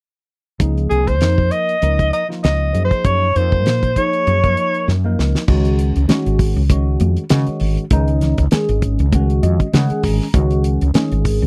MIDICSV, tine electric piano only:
0, 0, Header, 1, 2, 480
1, 0, Start_track
1, 0, Tempo, 608519
1, 480, Time_signature, 4, 2, 24, 8
1, 9047, End_track
2, 0, Start_track
2, 0, Title_t, "Tine electric piano"
2, 0, Program_c, 0, 4
2, 468, Note_on_c, 0, 53, 63
2, 474, Note_on_c, 0, 58, 65
2, 480, Note_on_c, 0, 63, 62
2, 482, Note_on_c, 0, 68, 72
2, 889, Note_off_c, 0, 53, 0
2, 892, Note_off_c, 0, 58, 0
2, 895, Note_off_c, 0, 63, 0
2, 896, Note_off_c, 0, 68, 0
2, 951, Note_on_c, 0, 53, 62
2, 956, Note_on_c, 0, 58, 57
2, 960, Note_on_c, 0, 63, 57
2, 967, Note_on_c, 0, 70, 64
2, 1371, Note_off_c, 0, 53, 0
2, 1374, Note_off_c, 0, 58, 0
2, 1376, Note_off_c, 0, 63, 0
2, 1379, Note_off_c, 0, 70, 0
2, 1432, Note_on_c, 0, 53, 58
2, 1434, Note_on_c, 0, 58, 53
2, 1440, Note_on_c, 0, 63, 51
2, 1444, Note_on_c, 0, 70, 67
2, 1750, Note_off_c, 0, 53, 0
2, 1751, Note_off_c, 0, 58, 0
2, 1754, Note_off_c, 0, 63, 0
2, 1756, Note_off_c, 0, 70, 0
2, 1802, Note_on_c, 0, 53, 58
2, 1805, Note_on_c, 0, 58, 54
2, 1808, Note_on_c, 0, 63, 53
2, 1814, Note_on_c, 0, 65, 67
2, 2142, Note_off_c, 0, 53, 0
2, 2146, Note_off_c, 0, 58, 0
2, 2152, Note_off_c, 0, 63, 0
2, 2152, Note_on_c, 0, 53, 59
2, 2155, Note_on_c, 0, 58, 50
2, 2162, Note_on_c, 0, 63, 53
2, 2163, Note_off_c, 0, 65, 0
2, 2165, Note_on_c, 0, 68, 66
2, 2573, Note_off_c, 0, 53, 0
2, 2575, Note_off_c, 0, 58, 0
2, 2578, Note_off_c, 0, 63, 0
2, 2580, Note_off_c, 0, 68, 0
2, 2643, Note_on_c, 0, 53, 55
2, 2645, Note_on_c, 0, 58, 55
2, 2651, Note_on_c, 0, 63, 51
2, 2657, Note_on_c, 0, 70, 66
2, 3059, Note_off_c, 0, 53, 0
2, 3060, Note_off_c, 0, 58, 0
2, 3063, Note_off_c, 0, 63, 0
2, 3066, Note_off_c, 0, 70, 0
2, 3123, Note_on_c, 0, 53, 64
2, 3123, Note_on_c, 0, 58, 59
2, 3131, Note_on_c, 0, 63, 60
2, 3136, Note_on_c, 0, 68, 74
2, 3437, Note_off_c, 0, 53, 0
2, 3437, Note_off_c, 0, 58, 0
2, 3441, Note_off_c, 0, 63, 0
2, 3443, Note_off_c, 0, 68, 0
2, 3494, Note_on_c, 0, 53, 66
2, 3501, Note_on_c, 0, 58, 60
2, 3501, Note_on_c, 0, 63, 58
2, 3509, Note_on_c, 0, 70, 73
2, 3895, Note_off_c, 0, 53, 0
2, 3899, Note_off_c, 0, 58, 0
2, 3899, Note_off_c, 0, 63, 0
2, 3903, Note_off_c, 0, 70, 0
2, 3976, Note_on_c, 0, 53, 76
2, 3978, Note_on_c, 0, 58, 73
2, 3985, Note_on_c, 0, 63, 74
2, 3988, Note_on_c, 0, 70, 91
2, 4276, Note_off_c, 0, 53, 0
2, 4277, Note_off_c, 0, 58, 0
2, 4281, Note_off_c, 0, 63, 0
2, 4282, Note_off_c, 0, 70, 0
2, 4319, Note_on_c, 0, 51, 90
2, 4324, Note_on_c, 0, 56, 85
2, 4330, Note_on_c, 0, 61, 79
2, 4335, Note_on_c, 0, 66, 94
2, 4737, Note_off_c, 0, 51, 0
2, 4740, Note_off_c, 0, 56, 0
2, 4743, Note_off_c, 0, 61, 0
2, 4745, Note_off_c, 0, 66, 0
2, 4794, Note_on_c, 0, 51, 82
2, 4798, Note_on_c, 0, 56, 80
2, 4804, Note_on_c, 0, 61, 82
2, 4809, Note_on_c, 0, 66, 95
2, 5215, Note_off_c, 0, 51, 0
2, 5217, Note_off_c, 0, 56, 0
2, 5220, Note_off_c, 0, 61, 0
2, 5222, Note_off_c, 0, 66, 0
2, 5283, Note_on_c, 0, 51, 78
2, 5287, Note_on_c, 0, 56, 75
2, 5289, Note_on_c, 0, 61, 70
2, 5296, Note_on_c, 0, 66, 88
2, 5699, Note_off_c, 0, 51, 0
2, 5701, Note_off_c, 0, 56, 0
2, 5702, Note_off_c, 0, 61, 0
2, 5705, Note_off_c, 0, 66, 0
2, 5762, Note_on_c, 0, 51, 87
2, 5764, Note_on_c, 0, 56, 86
2, 5770, Note_on_c, 0, 61, 84
2, 5775, Note_on_c, 0, 66, 94
2, 6178, Note_off_c, 0, 51, 0
2, 6179, Note_off_c, 0, 56, 0
2, 6182, Note_off_c, 0, 61, 0
2, 6184, Note_off_c, 0, 66, 0
2, 6245, Note_on_c, 0, 51, 89
2, 6248, Note_on_c, 0, 56, 79
2, 6252, Note_on_c, 0, 61, 82
2, 6254, Note_on_c, 0, 63, 103
2, 6659, Note_off_c, 0, 51, 0
2, 6660, Note_off_c, 0, 56, 0
2, 6662, Note_off_c, 0, 61, 0
2, 6663, Note_off_c, 0, 63, 0
2, 6717, Note_on_c, 0, 51, 81
2, 6718, Note_on_c, 0, 56, 84
2, 6725, Note_on_c, 0, 61, 79
2, 6726, Note_on_c, 0, 68, 94
2, 7134, Note_off_c, 0, 51, 0
2, 7134, Note_off_c, 0, 56, 0
2, 7138, Note_off_c, 0, 61, 0
2, 7138, Note_off_c, 0, 68, 0
2, 7199, Note_on_c, 0, 51, 80
2, 7205, Note_on_c, 0, 56, 70
2, 7209, Note_on_c, 0, 61, 73
2, 7215, Note_on_c, 0, 66, 87
2, 7438, Note_on_c, 0, 75, 65
2, 7614, Note_off_c, 0, 51, 0
2, 7617, Note_off_c, 0, 56, 0
2, 7619, Note_off_c, 0, 61, 0
2, 7622, Note_off_c, 0, 66, 0
2, 7662, Note_off_c, 0, 75, 0
2, 7674, Note_on_c, 0, 51, 94
2, 7681, Note_on_c, 0, 56, 85
2, 7682, Note_on_c, 0, 78, 68
2, 7686, Note_on_c, 0, 61, 80
2, 7691, Note_on_c, 0, 68, 103
2, 7905, Note_off_c, 0, 78, 0
2, 7925, Note_on_c, 0, 82, 61
2, 8091, Note_off_c, 0, 51, 0
2, 8094, Note_off_c, 0, 56, 0
2, 8097, Note_off_c, 0, 61, 0
2, 8099, Note_off_c, 0, 68, 0
2, 8146, Note_off_c, 0, 82, 0
2, 8153, Note_on_c, 0, 51, 92
2, 8154, Note_on_c, 0, 56, 85
2, 8160, Note_on_c, 0, 61, 85
2, 8166, Note_on_c, 0, 66, 107
2, 8569, Note_off_c, 0, 51, 0
2, 8570, Note_off_c, 0, 56, 0
2, 8573, Note_off_c, 0, 61, 0
2, 8576, Note_off_c, 0, 66, 0
2, 8627, Note_on_c, 0, 51, 93
2, 8632, Note_on_c, 0, 56, 75
2, 8635, Note_on_c, 0, 61, 85
2, 8639, Note_on_c, 0, 68, 99
2, 9045, Note_off_c, 0, 51, 0
2, 9047, Note_off_c, 0, 56, 0
2, 9047, Note_off_c, 0, 61, 0
2, 9047, Note_off_c, 0, 68, 0
2, 9047, End_track
0, 0, End_of_file